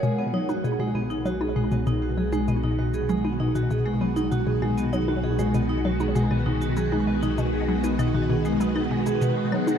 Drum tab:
SH |x--xx--xx--xx--x|x--xx--xx--xx--x|x--xx--xx--xx--x|x--xx--xx--xx--x|
CL |---------x------|---------x----x-|---------x------|----x----x----x-|